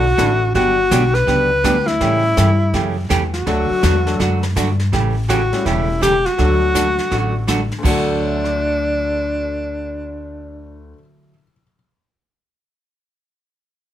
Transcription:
Already playing: B1 F#4
0.18 A1 D3 E3 A3 D4 E4 A4, kick, snare, hi-hat pedal
0.54 G1 D3 F#3 B3 D4 F#4 G4, brush sweep, kick, snare
0.91 B1 D3 F#3 B3 D4 G4, kick, snare, hi-hat pedal
1.15 B4, snare
1.27 C#2 D3 F#3 B3 D4 G4, brush sweep, kick, snare
1.64 D2 D3 F#3 G3 B3 D4 F#4 G4, kick, snare, hi-hat pedal
1.87 E4, snare
2.00 A2 C#3 E3 G3 A3 C#4 E4 G4, brush sweep, kick, snare
2.37 G2 C#3 E3 A3 C#4 G4, kick, snare, hi-hat pedal
2.74 F#2 C#3 E3 A3 C#4 G4, brush sweep, kick, snare
3.09 E2 C#3 E3 A3 C#4 G4, kick, snare, hi-hat pedal
3.34 F#4, snare
3.46 D2 D3 F#3 A3 D4 F#4 A4, brush sweep, kick, snare
3.70 muted upright bass stroke
3.83 E2 D3 F#3 A3 D4 F#4, kick, snare, hi-hat pedal
4.06 F#3 A3 D4 F#4 A4, snare
4.19 F#2 D3 F#3 A3 D4 F#4, brush sweep, kick, snare
4.43 snare
4.56 G2 D3 F#3 A3 D4 F#4, kick, snare, hi-hat pedal
4.80 snare
4.92 A1 C#3 E3 A3 C#4 G4, brush sweep, kick, snare
5.28 C#3 E3 A3 C#4 F#4 G4, kick, snare, hi-hat pedal
5.52 G3 A3 C#4 E4 G4, snare
5.65 E1 C#3 E3 A3 C#4 E4 G4, brush sweep, kick, snare
6.01 C#3 E3 A3 C#4 G4, kick, snare, hi-hat pedal
6.26 F#4, snare
6.38 D2 D3 F#3 A3 D4 F#4 A4, brush sweep, kick, snare
6.74 D3 F#3 A3 D4 F#4, kick, snare, hi-hat pedal
6.98 snare
7.11 A1 D3 F#3 A3 D4 F#4, brush sweep, kick, snare
7.47 D3 F#3 A3 D4 F#4, kick, snare, hi-hat pedal
7.72 snare
7.79 D2 D3
7.83 D2 D3 F#3 A3 D4 F#4, kick, crash
7.88 F#4 A4
8.21 C#5
8.28 E5
8.36 A5
8.44 D6, cross-stick
8.56 F#6
8.66 C#7

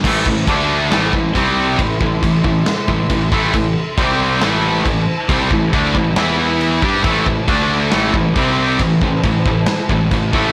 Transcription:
0.03 A1 A2 E4 C5 A5, kick, crash
0.07 E3 A3
0.26 A1 A2 E3, kick
0.44 D2 D4 A4, kick
0.48 D3 A3 D4, crash
0.90 A1 A2 E3 A3 E4 C5, snare, crash
1.13 A1 A2 E3, kick
1.35 C2 C3 G3 C4 G4 C6, kick, crash
1.79 A1 A2 E3 A4 E5, kick, crash
2.00 A1 A2 E3, kick
2.23 A1 A2 E3, kick, crash
2.44 A1 A2 E3, kick
2.66 snare, crash
2.88 A1 A2 E3, kick
3.09 A1 A2 E3, kick, crash
3.32 A1 A2 E3 A3, kick
3.53 A1 A2 E3, kick, crash
3.98 C2 C3 G3 C4 G4 C5, kick, crash
4.41 A1 A2 E3 A3 E4 A5, snare, crash
4.85 A1 A2 E3, kick, crash
5.29 C2 C3 G3 C4, kick, crash
5.51 A1 A2 E3, kick
5.73 D2 D3 A3 D4, kick, crash
5.95 A1 A2 E3, kick
6.16 E2 E3 B3 E4, snare, crash
6.21 B4 B5
6.61 crash
6.82 G2 G3 D4 G4 A5, kick
6.88 C5
7.04 A1 A2 E3 A3, kick, crash
7.26 A1 A2 E3, kick
7.48 D2 D3 A3 D4 A4, kick, crash
7.91 A1 A2 E3 A3, snare, crash
7.96 E4 C5
8.13 A1 A2 E3, kick
8.36 C2 C3 G3 C4 G4 C6, kick, crash
8.79 A1 A2 E3 E4 A5, kick, crash
9.01 A1 A2 E3, kick
9.24 A1 A2 E3, kick, crash
9.45 A1 A2 E3, kick
9.66 snare, crash
9.89 A1 A2 E3, kick
10.11 A1 A2 E3, kick, crash
10.33 A1 A2 E3 A3, kick

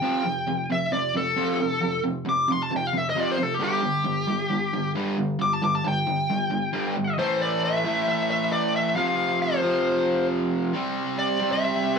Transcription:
Already playing: G5
0.02 F2 C3 F3
0.24 F2 C3
0.47 F2 C3
0.70 F2 C3 E5
0.92 F2 C3 D5
1.14 F2 C3 A4
1.37 F2 C3 F3
1.60 F2 C3
1.81 F2 C3
2.04 F2 C3
2.25 F2 C3 D6
2.48 F2 C3 C6
2.63 A5
2.70 F2 C3
2.77 G5
2.87 F5
2.93 F2 C3
2.97 E5
3.10 D#5
3.15 F2 C3 F3
3.20 D5
3.31 C5
3.38 F2 C3
3.43 A4
3.54 G4
3.60 G2 D3 G3 G4
3.82 G2 D3
4.04 G2 D3
4.28 G2 D3
4.50 G2 D3
4.73 G2 D3
4.95 G2 D3 G3
5.18 G2 D3
5.39 G2 D3 D6
5.53 A5
5.62 G2 D3 D6
5.75 A5
5.84 G2 D3 G5
6.07 G2 D3
6.30 G2 D3
6.50 G2 D3
6.73 G2 D3 G3
6.96 G2 D3
7.18 A2 E3 A3 C5
7.41 D5
7.65 E5
7.85 A2 E3 A3
8.08 E5
8.31 E5
8.52 D5
8.76 E5
8.95 F2 C3 F3 F5
9.42 C5
9.62 F2 C3 F3
10.73 C3 G3 C4
11.19 D5
11.40 C3 G3 C4
11.52 E5

